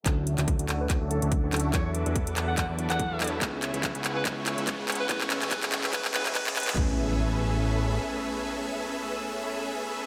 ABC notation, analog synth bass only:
X:1
M:4/4
L:1/16
Q:"Swing 16ths" 1/4=143
K:A
V:1 name="Analog synth bass" clef=bass
D,,3 D,,2 D,, D,,2 D,, D,,2 D,,2 D,, D,,2 | E,,3 E,,2 E,, E,,2 E,, E,,2 E,,2 E,, E,,2 | C,,3 C,,2 C,, C,,2 C,,3 C,,2 C,, C,,2 | A,,,3 A,,, A,,,3 A,,, A,,,2 A,,,2 A,,,2 A,,,2 |
A,,,12 z4 | z16 |]